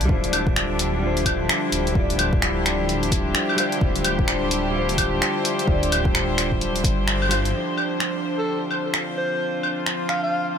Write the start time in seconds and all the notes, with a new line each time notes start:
Already playing: D3 F3 D4 E4 E5
0.01 C2, closed hi-hat
0.05 D1 G3, kick
0.09 F4 C5
0.24 closed hi-hat
0.33 open hi-hat, claves
0.47 kick
0.56 finger snap
0.70 G4
0.79 D1, open hi-hat
0.99 G3 F4
1.06 C5
1.17 closed hi-hat
1.26 kick, open hi-hat, claves
1.49 finger snap
1.72 D1, open hi-hat
1.87 closed hi-hat
1.92 D1 G3 F4, kick
2.00 D5
2.10 closed hi-hat
2.19 open hi-hat, claves
2.33 kick
2.42 finger snap
2.65 D1, finger snap, open hi-hat
2.89 open hi-hat
3.03 closed hi-hat
3.12 kick, open hi-hat
3.35 finger snap
3.49 claves
3.56 G3 F4 C5, open hi-hat, claves
3.72 closed hi-hat
3.78 D1 G3 F4, kick
3.86 C5
3.96 closed hi-hat
4.04 open hi-hat, claves
4.19 kick
4.28 finger snap
4.51 D1, open hi-hat
4.71 G3 F4
4.79 C5
4.89 closed hi-hat
4.98 kick, open hi-hat, claves
5.22 finger snap
5.45 open hi-hat
5.59 closed hi-hat
5.64 D1 G3 F4, kick
5.72 D5
5.83 closed hi-hat
5.92 open hi-hat, claves
6.05 kick
6.15 finger snap
6.37 D1, finger snap, open hi-hat
6.52 kick
6.61 open hi-hat
6.76 closed hi-hat
6.84 G1, kick, open hi-hat
7.08 finger snap
7.22 claves
7.29 G3 F4, open hi-hat, claves
7.33 C5
7.45 G1, closed hi-hat
7.50 F3 F5
7.54 D4 C5
7.77 C4, claves
8.00 finger snap
8.39 A4
8.44 F4
8.71 claves
8.94 finger snap
9.17 C5
9.63 claves
9.86 finger snap
10.09 F5, finger snap
10.23 F5